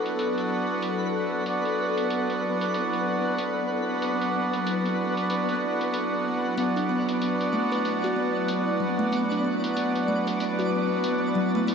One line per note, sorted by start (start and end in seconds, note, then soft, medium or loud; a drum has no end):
0.00 11.75 F#3 medium
0.00 1.43 B3 medium
0.00 11.75 B3 medium
0.00 1.44 D4 medium
0.00 11.75 E4 medium
0.00 1.45 F#4 medium
0.00 6.93 A4 medium
0.00 6.61 B4 medium
0.00 11.75 D5 medium
0.06 closed hi-hat soft
0.19 closed hi-hat medium
0.38 closed hi-hat soft
0.82 closed hi-hat medium
1.45 6.54 B3 medium
1.45 6.55 D4 medium
1.45 closed hi-hat medium
1.49 6.56 F#4 medium
1.65 closed hi-hat soft
1.98 closed hi-hat soft
2.10 closed hi-hat medium
2.30 closed hi-hat soft
2.61 closed hi-hat soft
2.74 closed hi-hat medium
2.93 closed hi-hat soft
3.38 closed hi-hat medium
4.02 closed hi-hat medium
4.22 closed hi-hat soft
4.53 closed hi-hat soft
4.67 closed hi-hat medium
4.86 closed hi-hat soft
5.17 closed hi-hat soft
5.30 closed hi-hat medium
5.49 closed hi-hat soft
5.81 closed hi-hat soft
5.94 closed hi-hat medium
6.55 11.64 B3 medium
6.55 6.75 B3 medium
6.55 11.65 D4 medium
6.55 11.75 D5 medium
6.55 closed hi-hat medium
6.60 11.66 F#4 medium
6.76 6.88 D4 medium
6.76 11.75 B4 medium
6.76 closed hi-hat soft
6.89 7.52 B3 medium
7.09 closed hi-hat soft
7.22 closed hi-hat medium
7.41 closed hi-hat soft
7.53 7.64 A3 medium
7.72 8.02 B4 medium
7.72 closed hi-hat soft
7.85 closed hi-hat soft
8.04 8.16 F#4 medium
8.04 closed hi-hat soft
8.16 8.79 B3 medium
8.48 closed hi-hat medium
8.80 8.98 F#3 medium
8.99 9.11 A3 medium
9.12 9.30 B3 medium
9.12 closed hi-hat medium
9.31 9.43 D4 medium
9.31 closed hi-hat soft
9.45 10.07 B3 medium
9.64 closed hi-hat soft
9.77 closed hi-hat medium
9.95 closed hi-hat soft
10.08 10.19 A3 medium
10.27 10.57 B4 medium
10.27 closed hi-hat soft
10.40 closed hi-hat medium
10.59 10.71 F#4 medium
10.59 closed hi-hat soft
10.71 11.34 B3 medium
11.04 closed hi-hat medium
11.35 11.53 F#3 medium
11.55 11.67 A3 medium
11.66 11.75 B3 medium
11.66 11.75 D4 medium
11.66 closed hi-hat medium
11.70 11.75 F#4 medium